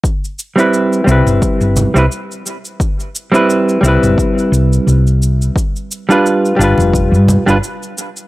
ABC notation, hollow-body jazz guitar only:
X:1
M:4/4
L:1/16
Q:"Swing 16ths" 1/4=87
K:C
V:1 name="Hollow-body jazz guitar"
z3 [G,CEB]3 [G,CEB]4- [G,CEB] [G,CEB] z4 | z3 [G,CEB]3 [G,CEB]8- [G,CEB]2 | z3 [G,DFB]3 [G,DFB]4- [G,DFB] [G,DFB] z4 |]